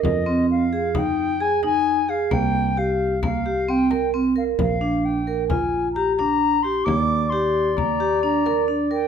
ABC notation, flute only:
X:1
M:5/4
L:1/8
Q:1/4=132
K:Fdor
V:1 name="Flute"
e2 f2 g2 a a2 f | g2 f2 f2 g2 z f | f2 g2 a2 b b2 c' | d'2 c'2 b2 b2 z g |]